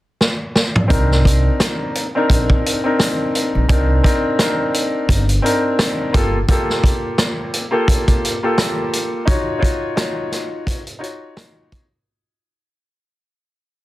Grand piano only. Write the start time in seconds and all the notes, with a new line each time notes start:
0.88 C4 D4 D#4 A#4
2.15 C4 D4 D#4 A#4
2.84 C4 D4 D#4 A#4
3.68 C4 D4 D#4 A#4
4.03 C4 D4 D#4 A#4
4.40 C4 D4 D#4 A#4
5.42 C4 D4 D#4 A#4
6.13 A#3 F4 G4 A4
6.48 A#3 F4 G4 A4
7.71 A#3 F4 G4 A4
8.43 A#3 F4 G4 A4
9.25 D#4 F4 F#4 C#5
9.58 D#4 F4 F#4 C#5
9.96 D#4 F4 F#4 C#5
10.99 D#4 F4 F#4 C#5